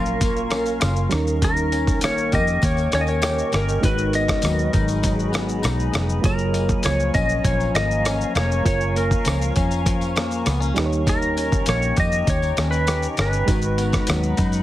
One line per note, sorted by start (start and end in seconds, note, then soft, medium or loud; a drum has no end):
0.00 0.78 A#1 medium
0.00 1.06 F#3 medium
0.00 1.11 F#3 medium
0.00 0.20 A#3 medium
0.00 0.50 C#4 medium
0.00 1.07 C#4 medium
0.00 0.79 F4 medium
0.00 1.08 F4 medium
0.00 1.09 A#4 medium
0.00 3.79 A#4 medium
0.00 1.07 F5 medium
0.00 1.07 A#5 medium
0.00 1.07 C#6 medium
0.06 shaker medium
0.21 2.02 A#3 medium
0.21 kick medium
0.21 closed hi-hat medium
0.21 tambourine medium
0.21 shaker medium
0.36 shaker soft
0.50 1.45 C#4 medium
0.50 cross-stick medium
0.50 closed hi-hat medium
0.50 tambourine soft
0.50 shaker soft
0.66 tambourine soft
0.66 shaker soft
0.80 1.06 F#1 medium
0.80 1.17 F4 medium
0.80 cross-stick medium
0.80 closed hi-hat medium
0.80 tambourine medium
0.80 shaker medium
0.96 shaker medium
1.09 2.03 D#2 loud
1.09 1.42 D#3 medium
1.09 3.48 G3 medium
1.09 3.48 C#4 medium
1.09 3.49 D#4 medium
1.09 6.20 D#5 medium
1.09 3.81 G5 medium
1.09 3.81 C#6 medium
1.09 cross-stick loud
1.09 closed hi-hat medium
1.09 tambourine soft
1.09 shaker medium
1.14 3.50 A#4 medium
1.27 shaker medium
1.42 4.42 D#3 medium
1.42 1.99 A#4 medium
1.42 kick loud
1.42 closed hi-hat medium
1.42 tambourine soft
1.42 shaker medium
1.57 shaker medium
1.72 2.92 C#4 medium
1.72 closed hi-hat medium
1.72 tambourine soft
1.72 shaker medium
1.87 kick medium
1.87 tambourine soft
1.87 shaker medium
2.01 2.35 A#1 medium
2.01 2.62 A#3 medium
2.01 2.34 C#5 loud
2.01 cross-stick loud
2.01 closed hi-hat medium
2.01 tambourine medium
2.01 shaker medium
2.18 shaker soft
2.32 2.57 F2 medium
2.32 3.21 G4 medium
2.32 2.65 D#5 loud
2.32 kick medium
2.32 closed hi-hat soft
2.32 tambourine soft
2.32 shaker soft
2.47 tambourine soft
2.47 shaker medium
2.62 2.87 D#2 loud
2.62 3.90 A#3 medium
2.62 2.92 C#5 medium
2.62 kick medium
2.62 closed hi-hat medium
2.62 tambourine medium
2.62 shaker medium
2.77 tambourine soft
2.77 shaker soft
2.92 3.41 D#2 medium
2.92 3.51 C#4 medium
2.92 3.01 C#5 loud
2.92 cross-stick medium
2.92 closed hi-hat soft
2.92 tambourine soft
2.92 shaker medium
3.01 3.07 D#5 medium
3.07 3.55 C#5 loud
3.07 tambourine soft
3.07 shaker soft
3.22 3.89 G4 medium
3.22 cross-stick medium
3.22 closed hi-hat medium
3.22 tambourine medium
3.22 shaker medium
3.38 shaker soft
3.52 3.77 G1 medium
3.52 3.89 C#4 medium
3.52 3.85 A#4 medium
3.52 cross-stick loud
3.52 closed hi-hat medium
3.52 tambourine soft
3.52 shaker medium
3.69 shaker medium
3.80 4.32 G#1 loud
3.80 6.24 G#2 medium
3.80 6.19 G#3 medium
3.80 6.20 D#4 medium
3.80 6.20 F#4 medium
3.80 6.22 G#4 medium
3.80 10.72 G#5 medium
3.80 6.22 B5 medium
3.80 kick loud
3.80 closed hi-hat medium
3.80 tambourine soft
3.80 shaker medium
3.85 4.15 B4 medium
3.85 6.21 B4 medium
3.98 shaker medium
4.13 5.31 B3 medium
4.13 4.71 D#5 medium
4.13 closed hi-hat medium
4.13 tambourine soft
4.13 shaker medium
4.28 kick medium
4.28 cross-stick medium
4.28 shaker medium
4.42 4.67 D#2 medium
4.42 5.02 F#3 medium
4.42 cross-stick medium
4.42 closed hi-hat medium
4.42 tambourine medium
4.42 shaker medium
4.59 shaker medium
4.73 5.60 G#1 medium
4.73 5.61 D#4 medium
4.73 kick loud
4.73 closed hi-hat soft
4.73 tambourine soft
4.73 shaker soft
4.88 tambourine soft
4.88 shaker medium
5.02 6.83 F#3 medium
5.02 kick medium
5.02 closed hi-hat medium
5.02 tambourine medium
5.02 shaker medium
5.19 shaker soft
5.32 5.91 B3 medium
5.32 cross-stick loud
5.32 closed hi-hat soft
5.32 tambourine soft
5.32 shaker soft
5.49 shaker soft
5.62 5.88 B1 medium
5.62 6.30 D#4 medium
5.62 cross-stick loud
5.62 closed hi-hat medium
5.62 tambourine medium
5.62 shaker medium
5.80 shaker soft
5.92 6.18 F1 medium
5.92 6.29 B3 medium
5.92 cross-stick medium
5.92 closed hi-hat medium
5.92 tambourine soft
5.92 shaker medium
6.09 shaker medium
6.21 6.72 F#1 loud
6.21 8.62 F#3 medium
6.21 8.60 A#3 medium
6.21 8.61 F4 medium
6.21 6.87 A#4 medium
6.21 10.73 F5 medium
6.21 13.44 A#5 medium
6.21 13.44 C#6 medium
6.21 kick loud
6.21 closed hi-hat medium
6.21 tambourine soft
6.21 shaker medium
6.26 8.62 C#5 medium
6.38 shaker medium
6.53 7.74 A#3 medium
6.53 closed hi-hat medium
6.53 tambourine soft
6.53 shaker medium
6.69 kick medium
6.69 shaker medium
6.83 7.09 C#2 medium
6.83 7.43 F3 medium
6.83 7.13 C#5 medium
6.83 cross-stick medium
6.83 closed hi-hat medium
6.83 tambourine medium
6.83 shaker medium
7.00 shaker medium
7.14 7.39 A#1 medium
7.14 8.05 C#4 medium
7.14 7.46 D#5 loud
7.14 kick medium
7.14 closed hi-hat soft
7.14 tambourine soft
7.14 shaker medium
7.29 shaker medium
7.44 7.69 A#1 loud
7.44 9.24 F3 medium
7.44 7.76 C#5 loud
7.44 kick medium
7.44 closed hi-hat medium
7.44 tambourine soft
7.44 shaker medium
7.60 tambourine soft
7.60 shaker soft
7.74 8.23 G#1 medium
7.74 8.35 A#3 medium
7.74 8.36 D#5 loud
7.74 cross-stick medium
7.74 closed hi-hat medium
7.74 tambourine soft
7.74 shaker medium
7.91 shaker soft
8.05 9.55 C#4 medium
8.05 cross-stick loud
8.05 closed hi-hat medium
8.05 tambourine medium
8.05 shaker medium
8.21 shaker medium
8.35 8.60 F1 loud
8.35 8.95 A#3 medium
8.35 8.65 C#5 medium
8.35 cross-stick loud
8.35 closed hi-hat medium
8.35 tambourine soft
8.35 shaker medium
8.51 shaker medium
8.63 9.14 F#1 loud
8.63 10.71 A#3 medium
8.63 10.72 F4 medium
8.63 10.73 A#4 medium
8.63 8.94 C#5 loud
8.63 kick loud
8.63 closed hi-hat medium
8.63 tambourine medium
8.63 shaker medium
8.68 10.74 C#5 medium
8.81 shaker medium
8.96 10.16 A#3 medium
8.96 9.53 A#4 medium
8.96 closed hi-hat medium
8.96 tambourine soft
8.96 shaker medium
9.11 kick medium
9.11 shaker medium
9.25 9.50 C#2 medium
9.25 9.84 F3 medium
9.25 cross-stick medium
9.25 closed hi-hat medium
9.25 tambourine medium
9.25 shaker medium
9.42 shaker medium
9.56 10.43 F2 medium
9.56 10.46 C#4 medium
9.56 kick medium
9.56 closed hi-hat medium
9.56 tambourine soft
9.56 shaker soft
9.71 tambourine soft
9.71 shaker medium
9.86 10.76 F3 medium
9.86 kick medium
9.86 closed hi-hat medium
9.86 tambourine soft
9.86 shaker medium
10.01 tambourine soft
10.01 shaker soft
10.16 11.66 A#3 medium
10.16 cross-stick medium
10.16 closed hi-hat soft
10.16 tambourine soft
10.16 shaker soft
10.31 tambourine soft
10.31 shaker soft
10.46 10.71 C#2 medium
10.46 10.60 B3 medium
10.46 cross-stick medium
10.46 closed hi-hat medium
10.46 tambourine medium
10.46 shaker medium
10.60 10.82 C#4 medium
10.60 shaker medium
10.74 11.49 D#2 loud
10.74 11.06 D#3 medium
10.74 13.13 G3 medium
10.74 13.14 D#4 medium
10.74 13.14 G4 medium
10.74 14.63 D#5 medium
10.74 13.45 G5 medium
10.74 cross-stick loud
10.74 closed hi-hat medium
10.74 tambourine soft
10.74 shaker medium
10.80 10.85 B4 medium
10.86 13.18 C#5 medium
10.93 shaker medium
11.06 14.07 D#3 medium
11.06 11.64 A#4 medium
11.06 kick loud
11.06 closed hi-hat medium
11.06 tambourine medium
11.06 shaker medium
11.22 shaker medium
11.36 12.57 C#4 medium
11.36 closed hi-hat medium
11.36 tambourine soft
11.36 shaker medium
11.52 kick medium
11.52 tambourine soft
11.52 shaker medium
11.66 11.91 A#1 medium
11.66 12.27 A#3 medium
11.66 11.99 C#5 medium
11.66 cross-stick medium
11.66 closed hi-hat medium
11.66 tambourine medium
11.66 shaker medium
11.82 shaker medium
11.97 12.22 F2 loud
11.97 12.87 G4 medium
11.97 12.29 D#5 loud
11.97 kick loud
11.97 closed hi-hat medium
11.97 tambourine medium
11.97 shaker soft
12.12 shaker medium
12.27 12.51 D#2 loud
12.27 12.70 C#5 loud
12.27 kick loud
12.27 closed hi-hat medium
12.27 tambourine medium
12.27 shaker medium
12.42 tambourine soft
12.42 shaker soft
12.57 13.06 D#2 medium
12.57 13.17 C#4 medium
12.57 cross-stick medium
12.57 closed hi-hat medium
12.57 tambourine soft
12.57 shaker soft
12.71 13.07 B4 medium
12.71 tambourine soft
12.71 shaker soft
12.87 13.54 G4 medium
12.87 cross-stick medium
12.87 closed hi-hat medium
12.87 tambourine medium
12.87 shaker medium
13.03 shaker medium
13.17 13.42 G1 loud
13.17 13.54 C#4 medium
13.17 cross-stick loud
13.17 closed hi-hat medium
13.17 tambourine soft
13.17 shaker soft
13.21 14.63 B4 medium
13.33 shaker medium
13.46 13.96 G#1 loud
13.46 14.63 G#2 medium
13.46 14.63 G#3 medium
13.46 14.63 D#4 medium
13.46 14.63 F#4 medium
13.46 14.63 G#4 medium
13.46 14.63 F#5 medium
13.46 14.63 B5 medium
13.46 kick loud
13.46 closed hi-hat medium
13.46 tambourine medium
13.46 shaker medium
13.51 14.63 B4 medium
13.62 shaker medium
13.78 14.63 B3 medium
13.78 closed hi-hat medium
13.78 tambourine soft
13.78 shaker medium
13.92 kick medium
13.92 cross-stick medium
13.92 tambourine soft
13.92 shaker medium
14.07 14.33 D#2 medium
14.07 14.63 F#3 medium
14.07 cross-stick medium
14.07 closed hi-hat medium
14.07 tambourine medium
14.07 shaker medium
14.23 shaker soft
14.37 14.63 F#2 medium
14.37 14.63 D#4 medium
14.37 kick loud
14.37 closed hi-hat soft
14.37 tambourine soft
14.37 shaker medium
14.52 tambourine soft
14.52 shaker medium